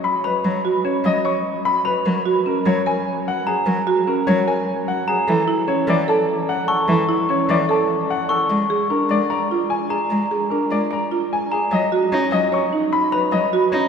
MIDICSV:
0, 0, Header, 1, 5, 480
1, 0, Start_track
1, 0, Tempo, 402685
1, 532, Time_signature, 4, 2, 24, 8
1, 16549, End_track
2, 0, Start_track
2, 0, Title_t, "Glockenspiel"
2, 0, Program_c, 0, 9
2, 289, Note_on_c, 0, 83, 68
2, 603, Note_off_c, 0, 83, 0
2, 2204, Note_on_c, 0, 83, 73
2, 2521, Note_off_c, 0, 83, 0
2, 4133, Note_on_c, 0, 82, 75
2, 4444, Note_off_c, 0, 82, 0
2, 6052, Note_on_c, 0, 82, 80
2, 6364, Note_off_c, 0, 82, 0
2, 7962, Note_on_c, 0, 85, 78
2, 8281, Note_off_c, 0, 85, 0
2, 9883, Note_on_c, 0, 85, 74
2, 10201, Note_off_c, 0, 85, 0
2, 11805, Note_on_c, 0, 82, 69
2, 12121, Note_off_c, 0, 82, 0
2, 13727, Note_on_c, 0, 82, 62
2, 14042, Note_off_c, 0, 82, 0
2, 15644, Note_on_c, 0, 83, 74
2, 15961, Note_off_c, 0, 83, 0
2, 16549, End_track
3, 0, Start_track
3, 0, Title_t, "Grand piano"
3, 0, Program_c, 1, 0
3, 48, Note_on_c, 1, 83, 61
3, 294, Note_on_c, 1, 71, 52
3, 363, Note_off_c, 1, 83, 0
3, 605, Note_off_c, 1, 71, 0
3, 1010, Note_on_c, 1, 73, 53
3, 1259, Note_on_c, 1, 75, 71
3, 1323, Note_off_c, 1, 73, 0
3, 1492, Note_on_c, 1, 85, 54
3, 1566, Note_off_c, 1, 75, 0
3, 1804, Note_off_c, 1, 85, 0
3, 1970, Note_on_c, 1, 83, 67
3, 2209, Note_on_c, 1, 71, 58
3, 2283, Note_off_c, 1, 83, 0
3, 2523, Note_off_c, 1, 71, 0
3, 2946, Note_on_c, 1, 70, 54
3, 3173, Note_on_c, 1, 73, 69
3, 3249, Note_off_c, 1, 70, 0
3, 3417, Note_on_c, 1, 80, 62
3, 3484, Note_off_c, 1, 73, 0
3, 3726, Note_off_c, 1, 80, 0
3, 3908, Note_on_c, 1, 78, 68
3, 4142, Note_on_c, 1, 68, 61
3, 4210, Note_off_c, 1, 78, 0
3, 4447, Note_off_c, 1, 68, 0
3, 4856, Note_on_c, 1, 70, 60
3, 5090, Note_on_c, 1, 73, 73
3, 5165, Note_off_c, 1, 70, 0
3, 5334, Note_on_c, 1, 80, 61
3, 5403, Note_off_c, 1, 73, 0
3, 5645, Note_off_c, 1, 80, 0
3, 5817, Note_on_c, 1, 78, 69
3, 6060, Note_on_c, 1, 68, 60
3, 6126, Note_off_c, 1, 78, 0
3, 6367, Note_off_c, 1, 68, 0
3, 6770, Note_on_c, 1, 73, 63
3, 7025, Note_on_c, 1, 74, 78
3, 7083, Note_off_c, 1, 73, 0
3, 7260, Note_on_c, 1, 81, 65
3, 7329, Note_off_c, 1, 74, 0
3, 7567, Note_off_c, 1, 81, 0
3, 7736, Note_on_c, 1, 78, 71
3, 7960, Note_on_c, 1, 69, 61
3, 8045, Note_off_c, 1, 78, 0
3, 8280, Note_off_c, 1, 69, 0
3, 8701, Note_on_c, 1, 73, 60
3, 8942, Note_on_c, 1, 74, 74
3, 9007, Note_off_c, 1, 73, 0
3, 9186, Note_on_c, 1, 81, 60
3, 9247, Note_off_c, 1, 74, 0
3, 9489, Note_off_c, 1, 81, 0
3, 9659, Note_on_c, 1, 78, 70
3, 9895, Note_on_c, 1, 69, 58
3, 9966, Note_off_c, 1, 78, 0
3, 10205, Note_off_c, 1, 69, 0
3, 10608, Note_on_c, 1, 70, 55
3, 10855, Note_on_c, 1, 74, 69
3, 10923, Note_off_c, 1, 70, 0
3, 11084, Note_on_c, 1, 82, 55
3, 11165, Note_off_c, 1, 74, 0
3, 11401, Note_off_c, 1, 82, 0
3, 11562, Note_on_c, 1, 80, 59
3, 11794, Note_on_c, 1, 68, 54
3, 11880, Note_off_c, 1, 80, 0
3, 12118, Note_off_c, 1, 68, 0
3, 12518, Note_on_c, 1, 70, 53
3, 12770, Note_on_c, 1, 74, 63
3, 12839, Note_off_c, 1, 70, 0
3, 13026, Note_on_c, 1, 82, 54
3, 13083, Note_off_c, 1, 74, 0
3, 13329, Note_off_c, 1, 82, 0
3, 13502, Note_on_c, 1, 80, 59
3, 13736, Note_on_c, 1, 68, 51
3, 13807, Note_off_c, 1, 80, 0
3, 13978, Note_on_c, 1, 75, 69
3, 14045, Note_off_c, 1, 68, 0
3, 14286, Note_off_c, 1, 75, 0
3, 14449, Note_on_c, 1, 73, 55
3, 14688, Note_on_c, 1, 75, 76
3, 14763, Note_off_c, 1, 73, 0
3, 14942, Note_on_c, 1, 85, 60
3, 15002, Note_off_c, 1, 75, 0
3, 15248, Note_off_c, 1, 85, 0
3, 15407, Note_on_c, 1, 83, 66
3, 15642, Note_on_c, 1, 71, 55
3, 15722, Note_off_c, 1, 83, 0
3, 15878, Note_on_c, 1, 75, 65
3, 15960, Note_off_c, 1, 71, 0
3, 16199, Note_off_c, 1, 75, 0
3, 16350, Note_on_c, 1, 73, 50
3, 16549, Note_off_c, 1, 73, 0
3, 16549, End_track
4, 0, Start_track
4, 0, Title_t, "Marimba"
4, 0, Program_c, 2, 12
4, 532, Note_on_c, 2, 73, 52
4, 772, Note_on_c, 2, 66, 66
4, 844, Note_off_c, 2, 73, 0
4, 1010, Note_on_c, 2, 61, 51
4, 1084, Note_off_c, 2, 66, 0
4, 1323, Note_off_c, 2, 61, 0
4, 1487, Note_on_c, 2, 73, 65
4, 1802, Note_off_c, 2, 73, 0
4, 2455, Note_on_c, 2, 70, 53
4, 2688, Note_on_c, 2, 66, 68
4, 2765, Note_off_c, 2, 70, 0
4, 2933, Note_on_c, 2, 61, 56
4, 3003, Note_off_c, 2, 66, 0
4, 3244, Note_off_c, 2, 61, 0
4, 3413, Note_on_c, 2, 70, 70
4, 3724, Note_off_c, 2, 70, 0
4, 4373, Note_on_c, 2, 70, 59
4, 4612, Note_on_c, 2, 66, 72
4, 4684, Note_off_c, 2, 70, 0
4, 4857, Note_on_c, 2, 61, 58
4, 4924, Note_off_c, 2, 66, 0
4, 5166, Note_off_c, 2, 61, 0
4, 5337, Note_on_c, 2, 70, 67
4, 5646, Note_off_c, 2, 70, 0
4, 6298, Note_on_c, 2, 69, 60
4, 6527, Note_on_c, 2, 64, 72
4, 6606, Note_off_c, 2, 69, 0
4, 6767, Note_on_c, 2, 61, 59
4, 6842, Note_off_c, 2, 64, 0
4, 7082, Note_off_c, 2, 61, 0
4, 7248, Note_on_c, 2, 69, 74
4, 7563, Note_off_c, 2, 69, 0
4, 8206, Note_on_c, 2, 69, 59
4, 8447, Note_on_c, 2, 64, 75
4, 8522, Note_off_c, 2, 69, 0
4, 8690, Note_on_c, 2, 61, 60
4, 8762, Note_off_c, 2, 64, 0
4, 9003, Note_off_c, 2, 61, 0
4, 9166, Note_on_c, 2, 69, 70
4, 9482, Note_off_c, 2, 69, 0
4, 10128, Note_on_c, 2, 74, 55
4, 10371, Note_on_c, 2, 68, 70
4, 10442, Note_off_c, 2, 74, 0
4, 10611, Note_on_c, 2, 62, 54
4, 10683, Note_off_c, 2, 68, 0
4, 10923, Note_off_c, 2, 62, 0
4, 11088, Note_on_c, 2, 74, 67
4, 11339, Note_on_c, 2, 65, 57
4, 11403, Note_off_c, 2, 74, 0
4, 11646, Note_off_c, 2, 65, 0
4, 12059, Note_on_c, 2, 74, 52
4, 12293, Note_on_c, 2, 68, 62
4, 12366, Note_off_c, 2, 74, 0
4, 12533, Note_on_c, 2, 62, 52
4, 12604, Note_off_c, 2, 68, 0
4, 12844, Note_off_c, 2, 62, 0
4, 13001, Note_on_c, 2, 74, 66
4, 13248, Note_on_c, 2, 65, 56
4, 13320, Note_off_c, 2, 74, 0
4, 13562, Note_off_c, 2, 65, 0
4, 13968, Note_on_c, 2, 73, 53
4, 14210, Note_on_c, 2, 66, 67
4, 14283, Note_off_c, 2, 73, 0
4, 14449, Note_on_c, 2, 61, 54
4, 14523, Note_off_c, 2, 66, 0
4, 14763, Note_off_c, 2, 61, 0
4, 14927, Note_on_c, 2, 73, 71
4, 15170, Note_on_c, 2, 63, 62
4, 15242, Note_off_c, 2, 73, 0
4, 15483, Note_off_c, 2, 63, 0
4, 15887, Note_on_c, 2, 73, 51
4, 16128, Note_on_c, 2, 66, 67
4, 16202, Note_off_c, 2, 73, 0
4, 16369, Note_on_c, 2, 61, 51
4, 16443, Note_off_c, 2, 66, 0
4, 16549, Note_off_c, 2, 61, 0
4, 16549, End_track
5, 0, Start_track
5, 0, Title_t, "Cello"
5, 0, Program_c, 3, 42
5, 532, Note_on_c, 3, 54, 63
5, 712, Note_off_c, 3, 54, 0
5, 1243, Note_on_c, 3, 54, 67
5, 1426, Note_off_c, 3, 54, 0
5, 2454, Note_on_c, 3, 54, 66
5, 2633, Note_off_c, 3, 54, 0
5, 3167, Note_on_c, 3, 54, 74
5, 3349, Note_off_c, 3, 54, 0
5, 4362, Note_on_c, 3, 54, 71
5, 4546, Note_off_c, 3, 54, 0
5, 5095, Note_on_c, 3, 54, 76
5, 5274, Note_off_c, 3, 54, 0
5, 6293, Note_on_c, 3, 52, 74
5, 6473, Note_off_c, 3, 52, 0
5, 7004, Note_on_c, 3, 52, 78
5, 7187, Note_off_c, 3, 52, 0
5, 8204, Note_on_c, 3, 52, 72
5, 8387, Note_off_c, 3, 52, 0
5, 8929, Note_on_c, 3, 52, 72
5, 9110, Note_off_c, 3, 52, 0
5, 10125, Note_on_c, 3, 56, 66
5, 10307, Note_off_c, 3, 56, 0
5, 10840, Note_on_c, 3, 56, 66
5, 11024, Note_off_c, 3, 56, 0
5, 12042, Note_on_c, 3, 56, 64
5, 12225, Note_off_c, 3, 56, 0
5, 12764, Note_on_c, 3, 56, 62
5, 12947, Note_off_c, 3, 56, 0
5, 13961, Note_on_c, 3, 54, 64
5, 14145, Note_off_c, 3, 54, 0
5, 14450, Note_on_c, 3, 63, 59
5, 14630, Note_off_c, 3, 63, 0
5, 14676, Note_on_c, 3, 54, 72
5, 14862, Note_off_c, 3, 54, 0
5, 15875, Note_on_c, 3, 54, 56
5, 16061, Note_off_c, 3, 54, 0
5, 16358, Note_on_c, 3, 63, 52
5, 16543, Note_off_c, 3, 63, 0
5, 16549, End_track
0, 0, End_of_file